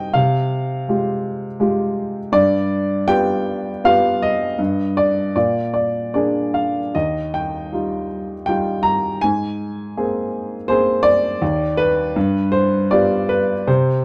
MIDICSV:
0, 0, Header, 1, 2, 480
1, 0, Start_track
1, 0, Tempo, 736196
1, 95, Time_signature, 3, 2, 24, 8
1, 2013, Tempo, 755668
1, 3453, Tempo, 790514
1, 4893, Tempo, 738916
1, 7773, Tempo, 762389
1, 8962, End_track
2, 0, Start_track
2, 0, Title_t, "Upright piano"
2, 0, Program_c, 0, 0
2, 0, Control_c, 0, 64, 127
2, 0, Note_on_c, 0, 48, 46
2, 0, Note_on_c, 0, 55, 38
2, 0, Note_on_c, 0, 60, 33
2, 0, Note_on_c, 0, 63, 39
2, 0, Note_on_c, 0, 75, 61
2, 0, Note_on_c, 0, 79, 81
2, 69, Note_off_c, 0, 48, 0
2, 88, Note_on_c, 0, 77, 70
2, 98, Note_on_c, 0, 48, 55
2, 101, Note_off_c, 0, 79, 0
2, 104, Note_off_c, 0, 63, 0
2, 104, Control_c, 0, 64, 0
2, 106, Note_off_c, 0, 75, 0
2, 107, Note_off_c, 0, 55, 0
2, 108, Note_off_c, 0, 60, 0
2, 215, Control_c, 0, 64, 127
2, 577, Note_on_c, 0, 56, 37
2, 581, Note_on_c, 0, 65, 32
2, 583, Note_on_c, 0, 67, 39
2, 956, Note_off_c, 0, 56, 0
2, 959, Note_off_c, 0, 65, 0
2, 959, Note_off_c, 0, 67, 0
2, 1022, Note_off_c, 0, 77, 0
2, 1042, Note_on_c, 0, 56, 46
2, 1047, Note_on_c, 0, 65, 40
2, 1049, Note_on_c, 0, 67, 50
2, 1423, Note_off_c, 0, 56, 0
2, 1426, Note_off_c, 0, 65, 0
2, 1427, Note_off_c, 0, 67, 0
2, 1498, Note_off_c, 0, 48, 0
2, 1515, Note_on_c, 0, 43, 63
2, 1517, Note_on_c, 0, 74, 90
2, 1531, Control_c, 0, 64, 0
2, 1654, Control_c, 0, 64, 127
2, 1982, Note_off_c, 0, 74, 0
2, 2005, Note_on_c, 0, 59, 47
2, 2006, Note_on_c, 0, 79, 91
2, 2007, Note_on_c, 0, 65, 42
2, 2008, Note_on_c, 0, 67, 48
2, 2394, Note_off_c, 0, 59, 0
2, 2396, Note_off_c, 0, 65, 0
2, 2396, Note_off_c, 0, 67, 0
2, 2492, Note_on_c, 0, 59, 49
2, 2494, Note_on_c, 0, 65, 44
2, 2497, Note_on_c, 0, 67, 50
2, 2498, Note_on_c, 0, 77, 87
2, 2507, Note_off_c, 0, 79, 0
2, 2735, Note_on_c, 0, 75, 77
2, 2741, Note_off_c, 0, 77, 0
2, 2873, Note_off_c, 0, 59, 0
2, 2875, Note_off_c, 0, 65, 0
2, 2876, Note_off_c, 0, 67, 0
2, 2940, Note_off_c, 0, 43, 0
2, 2965, Note_on_c, 0, 43, 59
2, 2978, Control_c, 0, 64, 0
2, 3084, Control_c, 0, 64, 127
2, 3185, Note_off_c, 0, 75, 0
2, 3209, Note_on_c, 0, 74, 74
2, 3434, Note_off_c, 0, 43, 0
2, 3445, Note_off_c, 0, 74, 0
2, 3453, Note_on_c, 0, 46, 48
2, 3455, Note_on_c, 0, 74, 59
2, 3459, Control_c, 0, 64, 0
2, 3573, Control_c, 0, 64, 127
2, 3676, Note_off_c, 0, 74, 0
2, 3685, Note_on_c, 0, 74, 53
2, 3921, Note_off_c, 0, 74, 0
2, 3930, Note_on_c, 0, 74, 48
2, 3934, Note_on_c, 0, 58, 31
2, 3938, Note_on_c, 0, 62, 31
2, 3940, Note_on_c, 0, 68, 37
2, 4173, Note_on_c, 0, 77, 50
2, 4184, Note_off_c, 0, 74, 0
2, 4324, Note_off_c, 0, 58, 0
2, 4326, Note_off_c, 0, 62, 0
2, 4328, Note_off_c, 0, 68, 0
2, 4397, Note_off_c, 0, 46, 0
2, 4420, Note_on_c, 0, 75, 60
2, 4425, Note_off_c, 0, 77, 0
2, 4425, Note_on_c, 0, 39, 45
2, 4428, Control_c, 0, 64, 0
2, 4543, Control_c, 0, 64, 127
2, 4642, Note_off_c, 0, 75, 0
2, 4659, Note_on_c, 0, 79, 63
2, 4892, Note_on_c, 0, 55, 33
2, 4895, Note_on_c, 0, 63, 30
2, 4899, Note_on_c, 0, 65, 35
2, 5111, Note_off_c, 0, 79, 0
2, 5283, Note_off_c, 0, 55, 0
2, 5285, Note_off_c, 0, 63, 0
2, 5287, Note_off_c, 0, 65, 0
2, 5370, Note_on_c, 0, 79, 71
2, 5385, Note_on_c, 0, 55, 39
2, 5388, Note_on_c, 0, 63, 33
2, 5389, Note_on_c, 0, 65, 41
2, 5609, Note_on_c, 0, 82, 82
2, 5625, Note_off_c, 0, 79, 0
2, 5771, Note_off_c, 0, 55, 0
2, 5773, Note_off_c, 0, 63, 0
2, 5774, Note_off_c, 0, 65, 0
2, 5842, Note_off_c, 0, 39, 0
2, 5860, Note_on_c, 0, 80, 82
2, 5866, Note_off_c, 0, 82, 0
2, 5874, Control_c, 0, 64, 0
2, 5875, Note_on_c, 0, 44, 57
2, 5984, Control_c, 0, 64, 127
2, 6353, Note_on_c, 0, 58, 40
2, 6354, Note_on_c, 0, 68, 45
2, 6355, Note_on_c, 0, 60, 37
2, 6727, Note_off_c, 0, 58, 0
2, 6727, Note_off_c, 0, 68, 0
2, 6728, Note_off_c, 0, 60, 0
2, 6787, Note_off_c, 0, 80, 0
2, 6812, Note_on_c, 0, 72, 81
2, 6817, Note_on_c, 0, 58, 42
2, 6824, Note_on_c, 0, 60, 41
2, 6824, Note_on_c, 0, 68, 50
2, 7034, Note_off_c, 0, 72, 0
2, 7038, Note_on_c, 0, 74, 93
2, 7196, Note_off_c, 0, 58, 0
2, 7200, Note_off_c, 0, 60, 0
2, 7200, Note_off_c, 0, 68, 0
2, 7269, Note_off_c, 0, 44, 0
2, 7291, Note_on_c, 0, 39, 69
2, 7298, Control_c, 0, 64, 0
2, 7420, Control_c, 0, 64, 127
2, 7523, Note_on_c, 0, 71, 87
2, 7537, Note_off_c, 0, 74, 0
2, 7757, Note_off_c, 0, 39, 0
2, 7774, Note_on_c, 0, 43, 65
2, 7781, Control_c, 0, 64, 0
2, 7889, Control_c, 0, 64, 127
2, 7998, Note_on_c, 0, 72, 80
2, 8019, Note_off_c, 0, 71, 0
2, 8245, Note_on_c, 0, 74, 75
2, 8250, Note_off_c, 0, 72, 0
2, 8250, Note_on_c, 0, 59, 43
2, 8251, Note_on_c, 0, 65, 44
2, 8256, Note_on_c, 0, 67, 52
2, 8485, Note_on_c, 0, 71, 68
2, 8494, Note_off_c, 0, 74, 0
2, 8633, Note_off_c, 0, 59, 0
2, 8634, Note_off_c, 0, 65, 0
2, 8637, Note_off_c, 0, 67, 0
2, 8703, Note_off_c, 0, 43, 0
2, 8727, Note_on_c, 0, 48, 62
2, 8727, Note_on_c, 0, 72, 70
2, 8733, Note_off_c, 0, 71, 0
2, 8736, Control_c, 0, 64, 0
2, 8855, Control_c, 0, 64, 127
2, 8962, Note_off_c, 0, 48, 0
2, 8962, Note_off_c, 0, 72, 0
2, 8962, End_track
0, 0, End_of_file